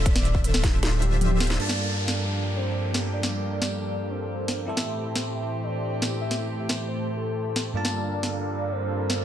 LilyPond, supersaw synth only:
\new Staff \with { instrumentName = "Supersaw synth" } { \time 4/4 \key g \dorian \tempo 4 = 156 <d' f' c'' e''>2.~ <d' f' c'' e''>8 <d d' f' c'' e''>8 | <g d' a' bes' f''>1~ | <g d' a' bes' f''>1 | <a e' g' c'' a''>1~ |
<a e' g' c'' a''>1 | <g d' a' bes' f''>1 | }